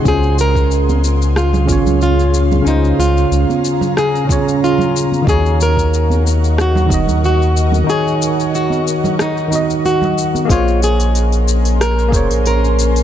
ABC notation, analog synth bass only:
X:1
M:4/4
L:1/16
Q:"Swing 16ths" 1/4=92
K:Bbm
V:1 name="Analog synth bass" clef=bass
D,,8- D,,2 A,,, D,,4- D,, | D,,2 D,,2 D,, z8 z3 | E,,8- E,,2 E,,, E,,4- E,, | z16 |
B,,,8- B,,,2 F,,, B,,,4- B,,, |]